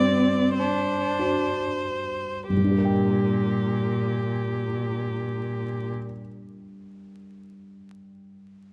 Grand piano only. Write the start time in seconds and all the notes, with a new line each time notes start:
Already playing: G2 D4 F#4 C5
1.19 D4 F#4 C5
2.50 G2
2.57 G3
2.64 D4
2.71 G4
2.78 A#4
2.85 G5